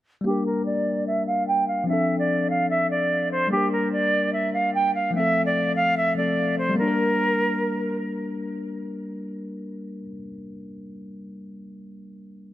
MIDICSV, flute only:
0, 0, Header, 1, 2, 480
1, 0, Start_track
1, 0, Tempo, 408163
1, 300, Time_signature, 4, 2, 24, 8
1, 14744, End_track
2, 0, Start_track
2, 0, Title_t, "Flute"
2, 0, Program_c, 0, 73
2, 296, Note_on_c, 0, 67, 88
2, 519, Note_off_c, 0, 67, 0
2, 544, Note_on_c, 0, 70, 74
2, 763, Note_off_c, 0, 70, 0
2, 772, Note_on_c, 0, 74, 82
2, 1227, Note_off_c, 0, 74, 0
2, 1261, Note_on_c, 0, 76, 80
2, 1481, Note_off_c, 0, 76, 0
2, 1494, Note_on_c, 0, 77, 70
2, 1718, Note_off_c, 0, 77, 0
2, 1739, Note_on_c, 0, 79, 80
2, 1960, Note_off_c, 0, 79, 0
2, 1974, Note_on_c, 0, 77, 66
2, 2198, Note_off_c, 0, 77, 0
2, 2219, Note_on_c, 0, 76, 90
2, 2558, Note_off_c, 0, 76, 0
2, 2577, Note_on_c, 0, 74, 85
2, 2916, Note_off_c, 0, 74, 0
2, 2940, Note_on_c, 0, 77, 86
2, 3161, Note_off_c, 0, 77, 0
2, 3179, Note_on_c, 0, 76, 95
2, 3401, Note_off_c, 0, 76, 0
2, 3419, Note_on_c, 0, 74, 79
2, 3871, Note_off_c, 0, 74, 0
2, 3901, Note_on_c, 0, 72, 91
2, 4122, Note_off_c, 0, 72, 0
2, 4139, Note_on_c, 0, 67, 91
2, 4360, Note_off_c, 0, 67, 0
2, 4380, Note_on_c, 0, 70, 77
2, 4601, Note_off_c, 0, 70, 0
2, 4615, Note_on_c, 0, 74, 90
2, 5068, Note_off_c, 0, 74, 0
2, 5094, Note_on_c, 0, 76, 78
2, 5318, Note_off_c, 0, 76, 0
2, 5338, Note_on_c, 0, 77, 75
2, 5560, Note_off_c, 0, 77, 0
2, 5582, Note_on_c, 0, 79, 85
2, 5802, Note_off_c, 0, 79, 0
2, 5822, Note_on_c, 0, 77, 69
2, 6042, Note_off_c, 0, 77, 0
2, 6060, Note_on_c, 0, 76, 94
2, 6398, Note_off_c, 0, 76, 0
2, 6418, Note_on_c, 0, 74, 85
2, 6757, Note_off_c, 0, 74, 0
2, 6775, Note_on_c, 0, 77, 99
2, 6998, Note_off_c, 0, 77, 0
2, 7023, Note_on_c, 0, 76, 91
2, 7243, Note_off_c, 0, 76, 0
2, 7259, Note_on_c, 0, 74, 78
2, 7711, Note_off_c, 0, 74, 0
2, 7741, Note_on_c, 0, 72, 82
2, 7961, Note_off_c, 0, 72, 0
2, 7980, Note_on_c, 0, 70, 95
2, 9372, Note_off_c, 0, 70, 0
2, 14744, End_track
0, 0, End_of_file